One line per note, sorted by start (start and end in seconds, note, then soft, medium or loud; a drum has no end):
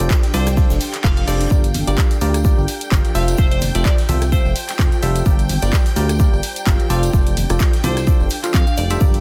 0.00 0.08 F1 medium
0.00 0.24 F3 medium
0.00 2.17 D4 medium
0.00 0.24 F4 medium
0.00 0.26 G4 medium
0.00 0.24 A4 medium
0.00 0.24 C5 medium
0.00 0.24 D5 medium
0.00 0.26 D5 medium
0.00 2.17 F5 medium
0.00 1.50 G5 medium
0.10 kick loud
0.10 snare loud
0.10 clap loud
0.10 shaker medium
0.22 1.51 A4 medium
0.22 snare medium
0.22 closed hi-hat medium
0.34 0.66 C2 loud
0.34 0.50 F3 medium
0.34 0.50 F4 medium
0.34 0.50 A4 medium
0.34 0.50 C5 medium
0.34 0.48 C5 medium
0.34 0.50 D5 loud
0.34 snare loud
0.34 open hi-hat medium
0.34 shaker medium
0.46 cross-stick medium
0.46 snare loud
0.46 closed hi-hat medium
0.46 shaker medium
0.57 0.78 F3 medium
0.57 0.78 F4 medium
0.57 0.78 A4 medium
0.57 0.78 C5 medium
0.57 0.78 D5 medium
0.57 kick loud
0.57 snare loud
0.57 reverse cymbal medium
0.57 shaker medium
0.70 0.79 F1 medium
0.70 snare loud
0.70 closed hi-hat soft
0.70 shaker medium
0.81 open hi-hat loud
0.81 shaker medium
0.94 clap soft
0.94 closed hi-hat medium
1.04 1.24 F1 medium
1.04 1.24 F3 medium
1.04 1.24 F4 medium
1.04 1.24 A4 medium
1.04 1.24 C5 medium
1.04 1.24 F5 medium
1.04 1.12 F5 medium
1.04 kick loud
1.04 clap loud
1.04 shaker medium
1.17 1.24 F5 medium
1.17 closed hi-hat soft
1.28 1.47 F1 medium
1.28 1.48 G3 medium
1.28 1.48 F4 medium
1.28 1.48 A4 medium
1.28 1.48 C5 medium
1.28 1.48 D5 loud
1.28 1.56 D5 medium
1.28 snare loud
1.28 open hi-hat medium
1.28 shaker medium
1.41 closed hi-hat medium
1.41 closed hi-hat soft
1.51 1.83 G1 loud
1.51 1.67 G3 medium
1.51 1.67 F4 medium
1.51 1.67 G4 medium
1.51 3.92 G4 medium
1.51 1.67 A#4 medium
1.51 1.67 D5 medium
1.51 9.00 G5 medium
1.51 kick loud
1.51 tambourine medium
1.51 shaker medium
1.64 closed hi-hat medium
1.64 tambourine soft
1.74 open hi-hat loud
1.74 high conga medium
1.74 shaker medium
1.87 1.96 G1 medium
1.87 2.11 G3 medium
1.87 2.11 F4 medium
1.87 2.11 G4 medium
1.87 2.11 A#4 medium
1.87 2.11 D5 medium
1.87 1.99 D5 medium
1.87 closed hi-hat medium
1.87 tambourine medium
1.98 kick loud
1.98 snare loud
1.98 clap loud
1.98 tambourine medium
1.98 shaker medium
2.11 closed hi-hat medium
2.11 closed hi-hat soft
2.11 tambourine soft
2.20 2.54 D2 loud
2.20 2.37 G3 medium
2.20 2.37 F4 medium
2.20 2.37 G4 medium
2.20 2.37 A#4 medium
2.20 4.00 D5 medium
2.20 2.37 D5 loud
2.20 open hi-hat medium
2.20 shaker medium
2.25 3.15 A#5 medium
2.34 cross-stick medium
2.34 closed hi-hat medium
2.34 tambourine medium
2.45 2.65 G3 medium
2.45 2.65 F4 medium
2.45 2.65 G4 medium
2.45 2.65 A#4 medium
2.45 2.65 D5 medium
2.45 kick loud
2.45 tambourine medium
2.45 shaker medium
2.58 2.66 G1 medium
2.58 tambourine soft
2.68 open hi-hat loud
2.68 shaker medium
2.81 closed hi-hat medium
2.81 tambourine medium
2.91 3.02 G1 medium
2.91 3.12 F3 medium
2.91 3.12 F4 medium
2.91 3.12 G4 medium
2.91 3.12 A#4 medium
2.91 3.12 F5 medium
2.91 kick loud
2.91 snare loud
2.91 clap loud
2.91 tambourine medium
2.91 shaker medium
3.05 closed hi-hat soft
3.05 tambourine soft
3.15 3.35 F1 medium
3.15 3.35 F3 loud
3.15 3.35 F4 medium
3.15 5.92 F4 medium
3.15 3.35 A4 medium
3.15 3.35 C5 medium
3.15 3.35 E5 loud
3.15 3.36 F5 medium
3.15 open hi-hat medium
3.15 shaker medium
3.28 closed hi-hat medium
3.28 tambourine medium
3.38 3.71 F1 loud
3.38 3.54 F3 medium
3.38 3.54 F4 medium
3.38 3.54 A4 medium
3.38 3.47 C5 medium
3.38 3.54 C5 medium
3.38 3.54 E5 medium
3.38 kick loud
3.38 tambourine medium
3.38 shaker medium
3.44 5.92 C5 medium
3.51 3.58 C5 medium
3.51 closed hi-hat medium
3.51 tambourine soft
3.61 open hi-hat loud
3.61 high conga medium
3.61 shaker medium
3.75 3.83 F1 medium
3.75 3.99 F3 medium
3.75 3.99 F4 medium
3.75 3.99 A4 medium
3.75 3.99 C5 medium
3.75 3.82 D5 medium
3.75 3.99 E5 medium
3.75 5.92 G5 medium
3.75 closed hi-hat medium
3.75 tambourine medium
3.85 3.94 D5 medium
3.85 kick loud
3.85 snare loud
3.85 clap loud
3.85 tambourine medium
3.85 shaker medium
3.98 snare medium
3.98 closed hi-hat medium
3.98 tambourine soft
4.09 4.41 C2 loud
4.09 4.25 F3 medium
4.09 4.25 F4 medium
4.09 4.25 A4 medium
4.09 4.25 C5 medium
4.09 4.25 E5 loud
4.09 5.26 A5 medium
4.09 open hi-hat loud
4.09 high conga medium
4.09 shaker medium
4.22 cross-stick medium
4.22 snare soft
4.22 closed hi-hat medium
4.22 tambourine medium
4.32 4.53 F3 medium
4.32 4.53 F4 medium
4.32 4.53 A4 medium
4.32 4.79 C5 loud
4.32 4.53 C5 medium
4.32 4.53 E5 medium
4.32 kick loud
4.32 tambourine medium
4.32 shaker medium
4.45 4.54 F1 medium
4.45 tambourine soft
4.56 open hi-hat loud
4.56 shaker medium
4.69 snare soft
4.69 clap soft
4.69 closed hi-hat medium
4.69 tambourine medium
4.79 4.90 F1 medium
4.79 4.99 F3 medium
4.79 4.99 F4 medium
4.79 4.99 A4 medium
4.79 4.99 C5 medium
4.79 4.99 G5 medium
4.79 kick loud
4.79 snare loud
4.79 clap loud
4.79 tambourine medium
4.79 shaker medium
4.92 closed hi-hat soft
4.92 tambourine soft
5.02 5.22 F1 medium
5.02 5.23 G3 loud
5.02 5.23 F4 medium
5.02 5.23 A4 medium
5.02 5.23 C5 medium
5.02 5.23 E5 loud
5.02 open hi-hat medium
5.02 shaker medium
5.16 closed hi-hat medium
5.16 tambourine medium
5.26 5.58 G1 loud
5.26 5.42 G3 medium
5.26 5.42 F4 medium
5.26 7.67 G4 medium
5.26 5.42 G4 medium
5.26 5.42 A#4 medium
5.26 5.42 D5 medium
5.26 kick loud
5.26 tambourine medium
5.26 shaker medium
5.39 closed hi-hat medium
5.39 tambourine soft
5.49 open hi-hat loud
5.49 high conga medium
5.49 shaker medium
5.62 5.71 G1 medium
5.62 5.86 G3 medium
5.62 5.86 F4 medium
5.62 5.86 G4 medium
5.62 5.86 A#4 medium
5.62 5.74 D5 medium
5.62 5.86 D5 medium
5.62 closed hi-hat medium
5.62 tambourine medium
5.73 7.70 D5 medium
5.73 kick loud
5.73 snare loud
5.73 clap loud
5.73 tambourine medium
5.73 shaker medium
5.86 closed hi-hat medium
5.86 closed hi-hat soft
5.86 tambourine soft
5.96 6.29 D2 loud
5.96 6.12 G3 medium
5.96 6.12 F4 medium
5.96 6.12 G4 medium
5.96 6.12 A#4 medium
5.96 6.12 D5 loud
5.96 6.90 A#5 medium
5.96 open hi-hat loud
5.96 shaker medium
6.09 cross-stick medium
6.09 closed hi-hat medium
6.09 tambourine medium
6.20 6.40 G3 medium
6.20 6.40 F4 medium
6.20 6.40 G4 medium
6.20 6.40 A#4 medium
6.20 6.40 D5 medium
6.20 kick loud
6.20 tambourine medium
6.20 shaker medium
6.33 6.41 G1 medium
6.33 tambourine soft
6.43 open hi-hat loud
6.43 shaker medium
6.56 closed hi-hat medium
6.56 tambourine medium
6.66 6.77 G1 medium
6.66 6.87 F3 medium
6.66 6.87 F4 medium
6.66 6.87 G4 medium
6.66 6.87 A#4 medium
6.66 6.87 F5 medium
6.66 kick loud
6.66 snare loud
6.66 clap loud
6.66 tambourine medium
6.66 shaker medium
6.79 closed hi-hat soft
6.79 tambourine soft
6.90 7.10 F1 loud
6.90 7.10 F3 loud
6.90 9.20 D4 medium
6.90 7.10 F4 medium
6.90 7.10 A4 medium
6.90 7.10 C5 medium
6.90 7.10 D5 loud
6.90 7.11 F5 medium
6.90 open hi-hat loud
6.90 shaker medium
7.03 closed hi-hat medium
7.03 tambourine medium
7.13 7.46 F1 loud
7.13 7.29 F3 medium
7.13 7.29 F4 medium
7.13 7.29 A4 medium
7.13 7.29 C5 medium
7.13 7.29 D5 medium
7.13 kick loud
7.13 tambourine medium
7.13 shaker medium
7.27 closed hi-hat medium
7.27 tambourine soft
7.37 open hi-hat loud
7.37 high conga medium
7.37 shaker medium
7.49 7.58 F1 medium
7.49 7.74 F3 medium
7.49 7.74 F4 medium
7.49 7.74 A4 medium
7.49 7.74 C5 medium
7.49 7.74 D5 medium
7.49 cross-stick medium
7.49 closed hi-hat medium
7.49 tambourine medium
7.60 kick loud
7.60 snare loud
7.60 clap loud
7.60 tambourine medium
7.60 shaker medium
7.71 9.01 A4 medium
7.71 snare medium
7.71 closed hi-hat medium
7.71 tambourine soft
7.84 8.16 C2 loud
7.84 8.00 F3 medium
7.84 8.00 F4 medium
7.84 8.00 A4 medium
7.84 7.98 C5 medium
7.84 8.00 C5 medium
7.84 8.00 D5 loud
7.84 9.20 F5 medium
7.84 open hi-hat medium
7.84 high conga medium
7.84 shaker medium
7.97 cross-stick medium
7.97 snare soft
7.97 closed hi-hat medium
7.97 tambourine medium
8.07 8.28 F3 medium
8.07 8.28 F4 medium
8.07 8.28 A4 medium
8.07 8.28 C5 medium
8.07 8.28 D5 medium
8.07 kick loud
8.07 tambourine medium
8.07 shaker medium
8.20 8.29 F1 medium
8.20 tambourine soft
8.30 open hi-hat loud
8.30 shaker medium
8.44 8.58 F3 medium
8.44 8.58 F4 medium
8.44 8.58 A4 medium
8.44 8.58 C5 medium
8.44 8.58 F5 medium
8.44 clap soft
8.44 closed hi-hat medium
8.44 tambourine medium
8.54 8.65 F2 loud
8.54 8.62 F5 medium
8.54 kick loud
8.54 snare loud
8.54 clap loud
8.54 tambourine medium
8.54 shaker medium
8.67 8.74 F5 medium
8.67 closed hi-hat soft
8.67 tambourine soft
8.77 8.97 F1 medium
8.77 9.06 D5 medium
8.77 open hi-hat medium
8.77 shaker medium
8.90 8.99 G3 medium
8.90 8.99 F4 medium
8.90 8.99 A4 medium
8.90 8.99 C5 medium
8.90 8.99 E5 loud
8.90 closed hi-hat medium
8.90 tambourine medium
9.01 9.20 G1 loud
9.01 9.17 G3 medium
9.01 9.17 F4 medium
9.01 9.17 G4 medium
9.01 9.20 G4 medium
9.01 9.17 A#4 medium
9.01 9.17 D5 medium
9.01 9.20 G5 medium
9.01 kick loud
9.01 tambourine medium
9.01 shaker medium
9.14 closed hi-hat medium
9.14 tambourine soft